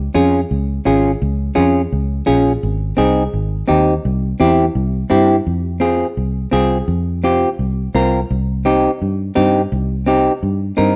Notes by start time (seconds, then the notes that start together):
0.14 F2 C#4 F4 G#4
0.51 C#2
0.85 G#1 C#4 F4 G#4
1.22 C#2
1.55 F2 C#4 F4 G#4
1.92 C#2
2.26 A#1 C#4 F4 G#4
2.63 G#1
2.97 C2 C4 D#4 G#4
3.33 G#1
3.67 D#2 C4 D#4 G4
4.05 C2
4.40 E2 C4 E4 G4
4.75 C2
5.10 G2 C4 E4 G4
5.47 F2
5.80 C4 F4 G#4
6.17 C2
6.51 C2 C4 F4 G#4
6.88 F2
7.24 C4 F4 G4
7.59 C2
7.94 C2 C4 F4 A#4
8.30 C2
8.65 C4 D#4 G4
9.02 G2
9.35 G2 C4 D#4 G4
9.72 C2
10.06 C4 D#4 G4
10.43 G2
10.77 G2 C4 D#4 A#4